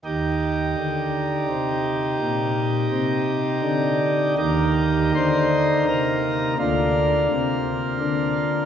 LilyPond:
<<
  \new Staff \with { instrumentName = "Pipe organ" } { \time 3/4 \key ees \major \tempo 4 = 84 << { r2. | r2. | g'4 c''4 bes'4 | f'2. | } \\ { <ees' g'>2.~ | <ees' g'>2. | <bes ees'>2. | bes2. | } >> }
  \new Staff \with { instrumentName = "Pipe organ" } { \clef bass \time 3/4 \key ees \major <ees, ees>4 d4 c4 | bes,4 c4 d4 | <ees, ees>4 d4 c4 | <d, d>4 c4 d4 | }
>>